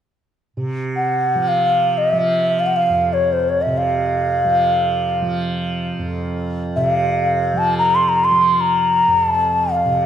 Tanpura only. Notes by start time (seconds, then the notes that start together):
0.57 C3
1.35 F3
2.13 F3
2.90 F2
3.66 C3
4.44 F3
5.22 F3
5.99 F2
6.76 C3
7.54 F3
8.31 F3
9.08 F2
9.85 C3